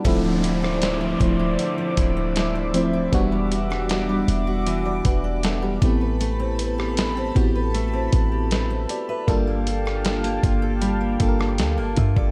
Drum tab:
HH |x-x-x-x-x-x-x-x-|x-x-x-x-x-x-x-x-|x-x-x-x-x-x-x-x-|x-x-xxx-x-x-x-x-|
SD |---ro-------o---|---ro-------o---|---ro-------o---|---ro------ro---|
BD |o-----o---o-----|o---------o---o-|------o---o-----|o-----o---o---oo|